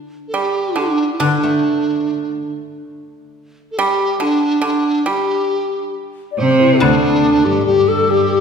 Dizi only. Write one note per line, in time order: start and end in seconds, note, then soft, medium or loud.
0.28 0.36 A4 medium
0.35 0.79 G4 medium
0.78 1.12 D4 medium
1.13 1.23 E4 soft
1.22 2.51 D4 medium
3.71 3.79 A4 medium
3.78 4.24 G4 medium
4.22 4.65 D4 medium
4.66 5.09 D4 medium
5.08 5.94 G4 medium
6.38 6.62 C5 medium
6.60 6.76 E4 medium
6.76 6.84 E4 medium
6.82 7.47 D4 medium
7.45 7.66 G4 medium
7.66 7.90 G4 medium
7.88 8.12 A4 medium
8.10 8.40 G4 medium